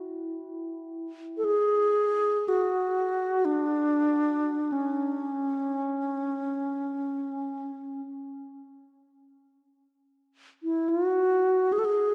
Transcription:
Already playing: E4
1.37 A4
1.44 G#4
2.48 F#4
3.45 D4
4.72 C#4
10.63 E4
10.89 F#4
11.72 G#4
11.79 A4
11.85 G#4

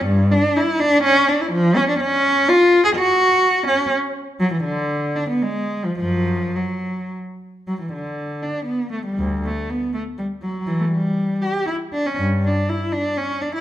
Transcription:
0.05 G2
0.32 D4
0.56 E4
0.80 D4
1.04 C#4
1.28 D4
1.41 E4
1.53 F3
1.76 C#4
1.89 D4
2.00 C#4
2.48 F4
2.84 G#4
2.96 F#4
3.67 C#4
4.40 F#3
4.53 E3
4.64 D3
5.15 D4
5.29 B3
5.42 G#3
5.84 F3
5.99 F#2 F3
6.56 F#3
7.67 F#3
7.81 E3
7.93 D3
8.42 D4
8.66 B3
8.92 A3
9.05 G3
9.19 D2
9.45 A3
9.70 B3
9.94 A3
10.18 G3
10.42 F#3
10.67 E3
10.80 A3
10.92 G3
11.42 G4
11.67 E4
11.93 D4
12.06 C#4
12.19 G2
12.45 D4
12.68 E4
12.92 D4
13.17 C#4
13.41 D4
13.54 E4

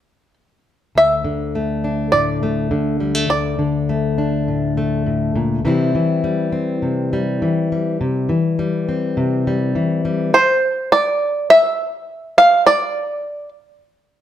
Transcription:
Already playing: C5
0.95 D2 E5
1.24 D3
1.55 A3
1.84 D4
2.12 A2 D5
2.43 A3
2.71 D3
3.00 G3
3.15 A3
3.29 D2 D5
3.59 D3
3.89 A3
4.18 D4
4.48 A2
4.77 A3
5.06 A2
5.36 A#2
5.65 C3 E3 G3 C4 E4
5.95 E3
6.24 G3
6.52 C4
6.82 C3
7.13 G3
7.42 E3
7.72 G3
8.01 C3
8.29 E3
8.59 G3
8.89 C4
9.17 C3
9.47 G3
9.75 E3
10.05 G3
10.34 C5
10.92 D5
11.50 E5
12.38 F5
12.67 D5

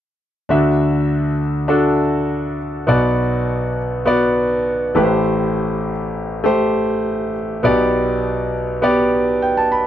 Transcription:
0.49 D2 D3 D4 F#4 E5
1.68 D4 F#4 A4
2.87 B1 B2 B3 F#4 D5
4.05 B3 F#4 D5
4.95 A1 A2 A3 G4 B4
5.03 C5
6.44 A3 G4 C5
7.63 B1 B2 B3 G4 D5
8.82 B3 G4 D5
9.42 G5
9.57 A5
9.72 B5

